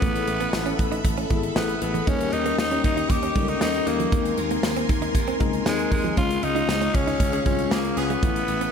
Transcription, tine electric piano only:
0, 0, Header, 1, 2, 480
1, 0, Start_track
1, 0, Tempo, 512821
1, 21, Time_signature, 4, 2, 24, 8
1, 8159, End_track
2, 0, Start_track
2, 0, Title_t, "Tine electric piano"
2, 0, Program_c, 0, 4
2, 0, Control_c, 0, 64, 127
2, 16, Note_on_c, 0, 59, 75
2, 21, Note_on_c, 0, 64, 70
2, 26, Note_on_c, 0, 69, 83
2, 33, Control_c, 0, 64, 0
2, 190, Control_c, 0, 64, 127
2, 741, Note_off_c, 0, 59, 0
2, 744, Note_off_c, 0, 64, 0
2, 746, Note_off_c, 0, 69, 0
2, 1217, Note_on_c, 0, 59, 90
2, 1223, Note_on_c, 0, 64, 82
2, 1229, Note_on_c, 0, 68, 80
2, 1282, Note_off_c, 0, 68, 0
2, 1286, Note_on_c, 0, 69, 98
2, 1761, Note_off_c, 0, 59, 0
2, 1764, Note_off_c, 0, 64, 0
2, 1796, Note_off_c, 0, 69, 0
2, 1936, Note_on_c, 0, 55, 75
2, 1938, Note_on_c, 0, 58, 70
2, 1941, Note_on_c, 0, 61, 65
2, 1944, Note_on_c, 0, 63, 69
2, 1947, Note_on_c, 0, 68, 65
2, 1953, Control_c, 0, 64, 0
2, 2001, Note_off_c, 0, 68, 0
2, 2005, Note_on_c, 0, 70, 86
2, 2121, Control_c, 0, 64, 127
2, 2661, Note_off_c, 0, 55, 0
2, 2663, Note_off_c, 0, 58, 0
2, 2664, Note_off_c, 0, 61, 0
2, 2665, Note_off_c, 0, 63, 0
2, 2696, Note_off_c, 0, 70, 0
2, 3138, Note_on_c, 0, 55, 78
2, 3139, Note_on_c, 0, 58, 73
2, 3141, Note_on_c, 0, 61, 69
2, 3147, Note_on_c, 0, 63, 67
2, 3147, Note_on_c, 0, 69, 66
2, 3201, Note_off_c, 0, 69, 0
2, 3205, Note_on_c, 0, 70, 81
2, 3681, Note_off_c, 0, 55, 0
2, 3682, Note_off_c, 0, 58, 0
2, 3683, Note_off_c, 0, 61, 0
2, 3686, Note_off_c, 0, 63, 0
2, 3715, Note_off_c, 0, 70, 0
2, 3854, Note_on_c, 0, 56, 72
2, 3855, Note_on_c, 0, 58, 68
2, 3859, Note_on_c, 0, 60, 66
2, 3862, Note_on_c, 0, 63, 71
2, 3865, Note_on_c, 0, 70, 81
2, 3871, Control_c, 0, 64, 0
2, 4021, Control_c, 0, 64, 127
2, 4581, Note_off_c, 0, 56, 0
2, 4581, Note_off_c, 0, 58, 0
2, 4583, Note_off_c, 0, 60, 0
2, 4585, Note_off_c, 0, 63, 0
2, 4586, Note_off_c, 0, 70, 0
2, 5052, Note_on_c, 0, 56, 93
2, 5055, Note_on_c, 0, 58, 84
2, 5057, Note_on_c, 0, 60, 82
2, 5061, Note_on_c, 0, 63, 84
2, 5063, Note_on_c, 0, 70, 102
2, 5598, Note_off_c, 0, 56, 0
2, 5600, Note_off_c, 0, 58, 0
2, 5601, Note_off_c, 0, 60, 0
2, 5603, Note_off_c, 0, 63, 0
2, 5604, Note_off_c, 0, 70, 0
2, 5774, Note_on_c, 0, 56, 77
2, 5781, Note_on_c, 0, 61, 65
2, 5787, Note_on_c, 0, 65, 87
2, 5793, Control_c, 0, 64, 0
2, 5984, Control_c, 0, 64, 127
2, 6501, Note_off_c, 0, 56, 0
2, 6504, Note_off_c, 0, 61, 0
2, 6507, Note_off_c, 0, 65, 0
2, 6972, Note_on_c, 0, 56, 75
2, 6979, Note_on_c, 0, 61, 66
2, 6984, Note_on_c, 0, 65, 81
2, 7518, Note_off_c, 0, 56, 0
2, 7522, Note_off_c, 0, 61, 0
2, 7524, Note_off_c, 0, 65, 0
2, 7699, Note_on_c, 0, 57, 73
2, 7705, Note_on_c, 0, 59, 68
2, 7710, Note_on_c, 0, 64, 83
2, 7713, Control_c, 0, 64, 0
2, 7903, Control_c, 0, 64, 127
2, 8159, Note_off_c, 0, 57, 0
2, 8159, Note_off_c, 0, 59, 0
2, 8159, Note_off_c, 0, 64, 0
2, 8159, End_track
0, 0, End_of_file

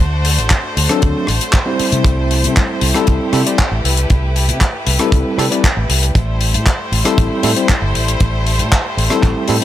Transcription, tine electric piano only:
0, 0, Header, 1, 2, 480
1, 0, Start_track
1, 0, Time_signature, 4, 2, 24, 8
1, 0, Tempo, 512821
1, 9026, End_track
2, 0, Start_track
2, 0, Title_t, "Tine electric piano"
2, 0, Program_c, 0, 4
2, 838, Note_on_c, 0, 54, 88
2, 841, Note_on_c, 0, 60, 81
2, 844, Note_on_c, 0, 62, 82
2, 848, Note_on_c, 0, 69, 98
2, 1169, Note_off_c, 0, 54, 0
2, 1171, Note_off_c, 0, 60, 0
2, 1173, Note_off_c, 0, 62, 0
2, 1174, Note_off_c, 0, 69, 0
2, 1550, Note_on_c, 0, 55, 86
2, 1555, Note_on_c, 0, 60, 80
2, 1563, Note_on_c, 0, 64, 80
2, 1568, Note_on_c, 0, 72, 97
2, 2726, Note_off_c, 0, 55, 0
2, 2728, Note_off_c, 0, 60, 0
2, 2732, Note_off_c, 0, 64, 0
2, 2735, Note_off_c, 0, 72, 0
2, 2757, Note_on_c, 0, 55, 89
2, 2759, Note_on_c, 0, 60, 82
2, 2763, Note_on_c, 0, 64, 81
2, 2766, Note_on_c, 0, 69, 98
2, 3089, Note_off_c, 0, 55, 0
2, 3090, Note_off_c, 0, 60, 0
2, 3092, Note_off_c, 0, 64, 0
2, 3093, Note_off_c, 0, 69, 0
2, 3114, Note_on_c, 0, 55, 92
2, 3116, Note_on_c, 0, 60, 81
2, 3121, Note_on_c, 0, 64, 83
2, 3123, Note_on_c, 0, 69, 98
2, 3184, Note_off_c, 0, 55, 0
2, 3184, Note_off_c, 0, 60, 0
2, 3187, Note_off_c, 0, 64, 0
2, 3188, Note_off_c, 0, 69, 0
2, 3238, Note_on_c, 0, 55, 76
2, 3241, Note_on_c, 0, 60, 69
2, 3244, Note_on_c, 0, 64, 67
2, 3247, Note_on_c, 0, 74, 83
2, 3344, Note_off_c, 0, 55, 0
2, 3346, Note_off_c, 0, 60, 0
2, 3347, Note_off_c, 0, 64, 0
2, 3349, Note_off_c, 0, 74, 0
2, 4673, Note_on_c, 0, 55, 89
2, 4677, Note_on_c, 0, 60, 80
2, 4679, Note_on_c, 0, 64, 83
2, 4682, Note_on_c, 0, 69, 97
2, 5007, Note_off_c, 0, 55, 0
2, 5009, Note_off_c, 0, 60, 0
2, 5010, Note_off_c, 0, 64, 0
2, 5011, Note_off_c, 0, 69, 0
2, 5032, Note_on_c, 0, 55, 93
2, 5035, Note_on_c, 0, 60, 85
2, 5039, Note_on_c, 0, 64, 86
2, 5041, Note_on_c, 0, 69, 100
2, 5102, Note_off_c, 0, 55, 0
2, 5104, Note_off_c, 0, 60, 0
2, 5106, Note_off_c, 0, 64, 0
2, 5107, Note_off_c, 0, 69, 0
2, 5154, Note_on_c, 0, 55, 76
2, 5156, Note_on_c, 0, 60, 69
2, 5159, Note_on_c, 0, 64, 70
2, 5163, Note_on_c, 0, 74, 83
2, 5262, Note_off_c, 0, 55, 0
2, 5264, Note_off_c, 0, 60, 0
2, 5265, Note_off_c, 0, 64, 0
2, 5267, Note_off_c, 0, 74, 0
2, 6596, Note_on_c, 0, 55, 90
2, 6598, Note_on_c, 0, 60, 85
2, 6601, Note_on_c, 0, 64, 83
2, 6605, Note_on_c, 0, 69, 99
2, 6928, Note_off_c, 0, 55, 0
2, 6929, Note_off_c, 0, 60, 0
2, 6931, Note_off_c, 0, 64, 0
2, 6933, Note_off_c, 0, 69, 0
2, 6955, Note_on_c, 0, 55, 89
2, 6957, Note_on_c, 0, 60, 86
2, 6961, Note_on_c, 0, 64, 85
2, 6964, Note_on_c, 0, 69, 99
2, 7024, Note_off_c, 0, 55, 0
2, 7025, Note_off_c, 0, 60, 0
2, 7027, Note_off_c, 0, 64, 0
2, 7029, Note_off_c, 0, 69, 0
2, 7075, Note_on_c, 0, 55, 75
2, 7077, Note_on_c, 0, 60, 69
2, 7082, Note_on_c, 0, 64, 69
2, 7084, Note_on_c, 0, 72, 82
2, 7183, Note_off_c, 0, 55, 0
2, 7184, Note_off_c, 0, 60, 0
2, 7186, Note_off_c, 0, 64, 0
2, 7188, Note_off_c, 0, 72, 0
2, 8517, Note_on_c, 0, 55, 92
2, 8519, Note_on_c, 0, 60, 79
2, 8524, Note_on_c, 0, 64, 82
2, 8527, Note_on_c, 0, 69, 97
2, 8849, Note_off_c, 0, 55, 0
2, 8850, Note_off_c, 0, 60, 0
2, 8852, Note_off_c, 0, 64, 0
2, 8854, Note_off_c, 0, 69, 0
2, 8876, Note_on_c, 0, 55, 92
2, 8881, Note_on_c, 0, 60, 80
2, 8883, Note_on_c, 0, 64, 82
2, 8886, Note_on_c, 0, 69, 98
2, 8945, Note_off_c, 0, 55, 0
2, 8947, Note_off_c, 0, 60, 0
2, 8948, Note_off_c, 0, 64, 0
2, 8949, Note_off_c, 0, 69, 0
2, 8997, Note_on_c, 0, 55, 75
2, 9026, Note_off_c, 0, 55, 0
2, 9026, End_track
0, 0, End_of_file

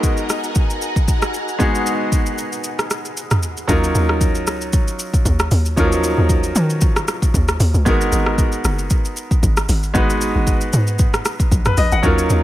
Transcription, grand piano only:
0, 0, Header, 1, 2, 480
1, 0, Start_track
1, 0, Tempo, 521739
1, 1473, Time_signature, 4, 2, 24, 8
1, 11437, End_track
2, 0, Start_track
2, 0, Title_t, "Grand piano"
2, 0, Program_c, 0, 0
2, 0, Control_c, 0, 64, 127
2, 0, Note_on_c, 0, 56, 74
2, 0, Note_on_c, 0, 59, 68
2, 0, Note_on_c, 0, 63, 68
2, 0, Note_on_c, 0, 66, 73
2, 0, Note_on_c, 0, 70, 85
2, 1430, Note_off_c, 0, 56, 0
2, 1434, Note_off_c, 0, 59, 0
2, 1438, Note_off_c, 0, 63, 0
2, 1441, Note_off_c, 0, 66, 0
2, 1446, Note_off_c, 0, 70, 0
2, 1458, Note_on_c, 0, 56, 76
2, 1465, Note_on_c, 0, 59, 69
2, 1473, Note_on_c, 0, 63, 69
2, 1481, Note_on_c, 0, 66, 71
2, 1489, Note_on_c, 0, 68, 82
2, 3349, Note_off_c, 0, 56, 0
2, 3352, Note_off_c, 0, 59, 0
2, 3356, Note_off_c, 0, 63, 0
2, 3360, Note_off_c, 0, 66, 0
2, 3364, Note_off_c, 0, 68, 0
2, 3381, Note_on_c, 0, 54, 78
2, 3389, Note_on_c, 0, 61, 69
2, 3398, Note_on_c, 0, 63, 75
2, 3404, Control_c, 0, 64, 0
2, 3404, Note_on_c, 0, 65, 73
2, 3413, Note_on_c, 0, 70, 85
2, 3563, Control_c, 0, 64, 127
2, 5270, Note_off_c, 0, 54, 0
2, 5274, Note_off_c, 0, 61, 0
2, 5278, Note_off_c, 0, 63, 0
2, 5281, Note_off_c, 0, 65, 0
2, 5286, Note_off_c, 0, 70, 0
2, 5302, Note_on_c, 0, 53, 65
2, 5310, Note_on_c, 0, 61, 73
2, 5317, Note_on_c, 0, 63, 73
2, 5325, Note_on_c, 0, 65, 70
2, 5334, Note_on_c, 0, 70, 88
2, 5360, Note_on_c, 0, 54, 79
2, 5371, Note_off_c, 0, 53, 0
2, 7194, Note_off_c, 0, 61, 0
2, 7198, Note_off_c, 0, 63, 0
2, 7202, Note_off_c, 0, 65, 0
2, 7206, Note_off_c, 0, 70, 0
2, 7219, Note_off_c, 0, 54, 0
2, 7223, Note_on_c, 0, 56, 75
2, 7230, Note_on_c, 0, 59, 73
2, 7238, Note_on_c, 0, 63, 69
2, 7245, Control_c, 0, 64, 0
2, 7246, Note_on_c, 0, 66, 70
2, 7253, Note_on_c, 0, 70, 88
2, 7412, Control_c, 0, 64, 127
2, 9111, Note_off_c, 0, 56, 0
2, 9114, Note_off_c, 0, 59, 0
2, 9118, Note_off_c, 0, 63, 0
2, 9123, Note_off_c, 0, 66, 0
2, 9126, Note_off_c, 0, 70, 0
2, 9141, Note_on_c, 0, 56, 79
2, 9149, Note_on_c, 0, 59, 72
2, 9157, Note_on_c, 0, 63, 68
2, 9164, Note_on_c, 0, 66, 74
2, 9172, Note_on_c, 0, 71, 85
2, 10339, Note_off_c, 0, 71, 0
2, 10729, Note_on_c, 0, 71, 66
2, 10829, Note_off_c, 0, 71, 0
2, 10835, Note_on_c, 0, 75, 74
2, 10959, Note_off_c, 0, 75, 0
2, 10969, Note_on_c, 0, 78, 66
2, 11030, Note_off_c, 0, 56, 0
2, 11034, Note_off_c, 0, 59, 0
2, 11038, Note_off_c, 0, 63, 0
2, 11042, Note_off_c, 0, 66, 0
2, 11062, Note_on_c, 0, 54, 78
2, 11069, Note_on_c, 0, 61, 72
2, 11078, Note_on_c, 0, 63, 68
2, 11085, Control_c, 0, 64, 0
2, 11085, Note_on_c, 0, 65, 75
2, 11092, Note_on_c, 0, 70, 81
2, 11195, Note_off_c, 0, 78, 0
2, 11253, Control_c, 0, 64, 127
2, 11437, Note_off_c, 0, 54, 0
2, 11437, Note_off_c, 0, 61, 0
2, 11437, Note_off_c, 0, 63, 0
2, 11437, Note_off_c, 0, 65, 0
2, 11437, Note_off_c, 0, 70, 0
2, 11437, End_track
0, 0, End_of_file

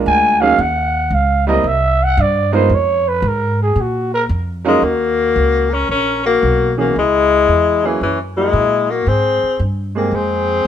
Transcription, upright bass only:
0, 0, Header, 1, 3, 480
1, 0, Start_track
1, 0, Key_signature, -6, "minor"
1, 0, Tempo, 530035
1, 534, Time_signature, 4, 2, 24, 8
1, 9664, End_track
2, 0, Start_track
2, 0, Title_t, "Upright bass"
2, 0, Program_c, 0, 32
2, 55, Note_on_c, 0, 38, 92
2, 520, Note_off_c, 0, 38, 0
2, 530, Note_on_c, 0, 39, 90
2, 995, Note_off_c, 0, 39, 0
2, 1000, Note_on_c, 0, 37, 88
2, 1472, Note_off_c, 0, 37, 0
2, 1485, Note_on_c, 0, 36, 84
2, 1955, Note_off_c, 0, 36, 0
2, 1968, Note_on_c, 0, 43, 100
2, 2436, Note_off_c, 0, 43, 0
2, 2441, Note_on_c, 0, 41, 87
2, 2912, Note_off_c, 0, 41, 0
2, 2919, Note_on_c, 0, 44, 101
2, 3391, Note_off_c, 0, 44, 0
2, 3402, Note_on_c, 0, 46, 87
2, 3873, Note_off_c, 0, 46, 0
2, 3888, Note_on_c, 0, 41, 89
2, 4356, Note_off_c, 0, 41, 0
2, 4363, Note_on_c, 0, 39, 83
2, 4834, Note_off_c, 0, 39, 0
2, 4852, Note_on_c, 0, 37, 84
2, 5319, Note_off_c, 0, 37, 0
2, 5333, Note_on_c, 0, 34, 70
2, 5799, Note_off_c, 0, 34, 0
2, 5820, Note_on_c, 0, 35, 87
2, 6283, Note_off_c, 0, 35, 0
2, 6299, Note_on_c, 0, 37, 74
2, 6763, Note_off_c, 0, 37, 0
2, 6776, Note_on_c, 0, 40, 83
2, 7242, Note_off_c, 0, 40, 0
2, 7256, Note_on_c, 0, 42, 76
2, 7722, Note_off_c, 0, 42, 0
2, 7727, Note_on_c, 0, 46, 90
2, 8198, Note_off_c, 0, 46, 0
2, 8210, Note_on_c, 0, 44, 83
2, 8515, Note_off_c, 0, 44, 0
2, 8689, Note_on_c, 0, 43, 86
2, 9153, Note_off_c, 0, 43, 0
2, 9159, Note_on_c, 0, 41, 71
2, 9635, Note_off_c, 0, 41, 0
2, 9664, End_track
3, 0, Start_track
3, 0, Title_t, "Muted upright bass strokes"
3, 8540, Note_on_c, 9, 29, 37
3, 8631, Note_off_c, 9, 29, 0
3, 9664, End_track
0, 0, End_of_file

